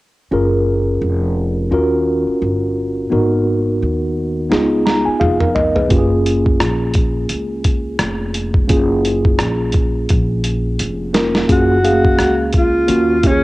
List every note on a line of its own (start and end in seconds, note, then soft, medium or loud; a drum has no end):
0.31 0.98 F#1 medium
0.31 1.69 C#4 medium
0.31 1.69 F4 medium
0.31 1.69 G#4 medium
0.31 1.70 A#4 medium
1.02 1.68 F1 medium
1.71 2.24 D#2 medium
1.71 3.08 C#4 medium
1.71 3.09 F4 medium
1.71 3.09 F#4 medium
1.71 3.10 A#4 medium
2.27 muted upright bass stroke soft
2.42 3.08 G1 medium
3.10 3.78 G#1 medium
3.10 4.48 B3 medium
3.10 4.48 D#4 medium
3.10 4.49 F#4 medium
3.10 4.49 A#4 medium
3.82 4.48 D#2 medium
4.50 5.03 C#2 medium
4.50 5.87 B3 medium
4.50 5.88 D#4 medium
4.50 5.20 F4 medium
4.50 5.19 G#4 medium
4.50 snare medium
4.86 5.04 A#5 medium
4.86 snare medium
5.05 5.20 G#5 medium
5.05 muted upright bass stroke soft
5.20 5.87 F1 medium
5.20 5.40 F4 soft
5.20 5.39 G#4 medium
5.20 5.53 F5 medium
5.20 mid tom medium
5.40 5.74 A#4 medium
5.40 mid tom medium
5.55 5.88 D#5 medium
5.55 floor tom medium
5.75 5.97 G#4 soft
5.75 6.09 B4 medium
5.75 floor tom medium
5.89 6.57 F#1 medium
5.89 8.65 A#3 medium
5.89 8.66 C#4 medium
5.89 8.66 F4 medium
5.89 5.98 G4 medium
5.89 kick medium
5.89 closed hi-hat medium
5.98 8.69 G#4 medium
6.26 closed hi-hat medium
6.46 kick medium
6.60 7.27 A#1 medium
6.60 cross-stick loud
6.60 closed hi-hat medium
6.94 kick medium
6.94 closed hi-hat medium
7.29 7.96 C#2 medium
7.29 closed hi-hat medium
7.64 kick medium
7.64 closed hi-hat medium
7.99 8.66 F1 medium
7.99 cross-stick loud
7.99 closed hi-hat medium
8.34 closed hi-hat medium
8.54 kick medium
8.68 9.36 F#1 medium
8.68 11.09 A#3 medium
8.68 11.09 C#4 medium
8.68 11.10 F4 medium
8.68 11.10 G#4 medium
8.68 kick medium
8.68 closed hi-hat medium
9.05 closed hi-hat medium
9.25 kick medium
9.39 10.05 A#1 medium
9.39 cross-stick loud
9.39 closed hi-hat medium
9.72 kick medium
9.72 closed hi-hat medium
10.09 10.76 A#1 medium
10.09 kick medium
10.09 closed hi-hat medium
10.44 closed hi-hat medium
10.79 11.46 F1 medium
10.79 closed hi-hat loud
11.13 11.47 A#3 medium
11.13 11.47 C#4 soft
11.13 11.48 F4 soft
11.13 11.49 A#4 medium
11.13 snare medium
11.13 closed hi-hat medium
11.35 snare medium
11.48 12.15 F#1 medium
11.48 11.76 A#3 medium
11.48 11.76 C#4 medium
11.48 11.77 F4 medium
11.48 11.77 G#4 medium
11.48 kick loud
11.48 closed hi-hat medium
11.52 12.51 F#4 medium
11.83 11.91 A3 soft
11.83 12.86 C#4 medium
11.83 12.89 G#4 medium
11.83 12.89 F5 medium
11.83 closed hi-hat medium
11.90 12.86 A#3 medium
12.05 kick medium
12.19 12.85 C#2 medium
12.19 cross-stick medium
12.19 closed hi-hat medium
12.53 kick medium
12.53 closed hi-hat medium
12.57 13.28 F4 medium
12.87 13.44 D#2 medium
12.87 13.17 A#3 medium
12.87 13.17 C#4 medium
12.87 13.17 F4 medium
12.87 13.17 F#4 medium
12.87 closed hi-hat medium
13.23 13.44 A#3 medium
13.23 13.44 C#4 medium
13.23 13.44 F4 medium
13.23 13.31 G4 medium
13.23 kick medium
13.23 closed hi-hat medium
13.30 13.44 G#4 medium